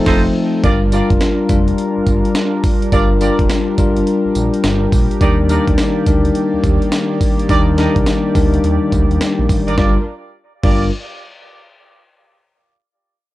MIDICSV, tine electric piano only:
0, 0, Header, 1, 2, 480
1, 0, Start_track
1, 0, Key_signature, -2, "minor"
1, 0, Tempo, 571429
1, 535, Time_signature, 4, 2, 24, 8
1, 11208, End_track
2, 0, Start_track
2, 0, Title_t, "Tine electric piano"
2, 0, Program_c, 0, 4
2, 0, Control_c, 0, 64, 127
2, 0, Note_on_c, 0, 53, 102
2, 0, Note_on_c, 0, 57, 109
2, 0, Note_on_c, 0, 60, 106
2, 0, Note_on_c, 0, 63, 112
2, 0, Note_on_c, 0, 69, 96
2, 533, Note_on_c, 0, 55, 96
2, 536, Note_on_c, 0, 62, 88
2, 539, Note_on_c, 0, 65, 78
2, 543, Note_on_c, 0, 70, 102
2, 545, Note_off_c, 0, 60, 0
2, 545, Control_c, 0, 64, 0
2, 547, Note_off_c, 0, 63, 0
2, 549, Note_off_c, 0, 69, 0
2, 551, Note_off_c, 0, 53, 0
2, 552, Note_off_c, 0, 57, 0
2, 712, Control_c, 0, 64, 127
2, 745, Note_off_c, 0, 55, 0
2, 747, Note_off_c, 0, 62, 0
2, 748, Note_off_c, 0, 65, 0
2, 750, Note_off_c, 0, 70, 0
2, 776, Note_on_c, 0, 55, 82
2, 779, Note_on_c, 0, 62, 77
2, 783, Note_on_c, 0, 65, 80
2, 785, Note_on_c, 0, 70, 93
2, 1198, Note_off_c, 0, 55, 0
2, 1199, Note_off_c, 0, 62, 0
2, 1201, Note_off_c, 0, 65, 0
2, 1202, Note_off_c, 0, 70, 0
2, 1251, Note_on_c, 0, 55, 94
2, 1255, Note_on_c, 0, 62, 80
2, 1259, Note_on_c, 0, 65, 78
2, 1262, Note_on_c, 0, 70, 91
2, 2076, Note_off_c, 0, 55, 0
2, 2078, Note_off_c, 0, 62, 0
2, 2080, Note_off_c, 0, 65, 0
2, 2081, Note_off_c, 0, 70, 0
2, 2454, Note_on_c, 0, 55, 90
2, 2458, Note_on_c, 0, 62, 88
2, 2460, Note_on_c, 0, 65, 77
2, 2464, Note_on_c, 0, 70, 102
2, 2666, Note_off_c, 0, 55, 0
2, 2668, Note_off_c, 0, 62, 0
2, 2669, Note_off_c, 0, 65, 0
2, 2671, Note_off_c, 0, 70, 0
2, 2692, Note_on_c, 0, 55, 87
2, 2698, Note_on_c, 0, 62, 76
2, 2700, Note_on_c, 0, 65, 75
2, 2702, Note_on_c, 0, 70, 98
2, 3116, Note_off_c, 0, 55, 0
2, 3119, Note_off_c, 0, 62, 0
2, 3120, Note_off_c, 0, 65, 0
2, 3121, Note_off_c, 0, 70, 0
2, 3175, Note_on_c, 0, 55, 92
2, 3178, Note_on_c, 0, 62, 81
2, 3181, Note_on_c, 0, 65, 83
2, 3184, Note_on_c, 0, 70, 93
2, 3998, Note_off_c, 0, 55, 0
2, 3999, Note_off_c, 0, 62, 0
2, 4001, Note_off_c, 0, 65, 0
2, 4002, Note_off_c, 0, 70, 0
2, 4373, Note_on_c, 0, 55, 91
2, 4377, Note_on_c, 0, 62, 81
2, 4380, Note_on_c, 0, 63, 82
2, 4385, Note_on_c, 0, 70, 95
2, 4387, Control_c, 0, 64, 0
2, 4512, Control_c, 0, 64, 127
2, 4585, Note_off_c, 0, 55, 0
2, 4587, Note_off_c, 0, 62, 0
2, 4589, Note_off_c, 0, 63, 0
2, 4591, Note_off_c, 0, 70, 0
2, 4611, Note_on_c, 0, 55, 82
2, 4614, Note_on_c, 0, 62, 80
2, 4618, Note_on_c, 0, 63, 79
2, 4621, Note_on_c, 0, 70, 98
2, 5035, Note_off_c, 0, 55, 0
2, 5037, Note_off_c, 0, 62, 0
2, 5039, Note_off_c, 0, 63, 0
2, 5041, Note_off_c, 0, 70, 0
2, 5095, Note_on_c, 0, 55, 84
2, 5098, Note_on_c, 0, 62, 84
2, 5101, Note_on_c, 0, 63, 76
2, 5105, Note_on_c, 0, 70, 97
2, 5918, Note_off_c, 0, 55, 0
2, 5919, Note_off_c, 0, 62, 0
2, 5921, Note_off_c, 0, 63, 0
2, 5923, Note_off_c, 0, 70, 0
2, 6292, Note_on_c, 0, 55, 87
2, 6296, Note_on_c, 0, 62, 88
2, 6299, Note_on_c, 0, 63, 84
2, 6303, Note_on_c, 0, 70, 94
2, 6505, Note_off_c, 0, 55, 0
2, 6506, Note_off_c, 0, 62, 0
2, 6508, Note_off_c, 0, 63, 0
2, 6510, Note_off_c, 0, 70, 0
2, 6531, Note_on_c, 0, 55, 90
2, 6534, Note_on_c, 0, 62, 83
2, 6537, Note_on_c, 0, 63, 75
2, 6541, Note_on_c, 0, 70, 101
2, 6955, Note_off_c, 0, 55, 0
2, 6957, Note_off_c, 0, 62, 0
2, 6959, Note_off_c, 0, 63, 0
2, 6960, Note_off_c, 0, 70, 0
2, 7013, Note_on_c, 0, 55, 92
2, 7015, Note_on_c, 0, 62, 81
2, 7019, Note_on_c, 0, 63, 80
2, 7021, Note_on_c, 0, 70, 93
2, 7837, Note_off_c, 0, 55, 0
2, 7838, Note_off_c, 0, 62, 0
2, 7840, Note_off_c, 0, 63, 0
2, 7841, Note_off_c, 0, 70, 0
2, 8218, Note_on_c, 0, 55, 83
2, 8218, Note_on_c, 0, 62, 77
2, 8218, Note_on_c, 0, 65, 78
2, 8218, Note_on_c, 0, 70, 94
2, 8227, Control_c, 0, 64, 0
2, 8375, Note_off_c, 0, 55, 0
2, 8375, Note_off_c, 0, 62, 0
2, 8375, Note_off_c, 0, 65, 0
2, 8375, Note_off_c, 0, 70, 0
2, 8936, Note_on_c, 0, 62, 79
2, 8937, Note_on_c, 0, 65, 82
2, 8938, Note_on_c, 0, 55, 86
2, 8938, Note_on_c, 0, 70, 97
2, 9159, Note_off_c, 0, 62, 0
2, 9159, Note_off_c, 0, 65, 0
2, 9159, Note_off_c, 0, 70, 0
2, 9160, Note_off_c, 0, 55, 0
2, 11208, End_track
0, 0, End_of_file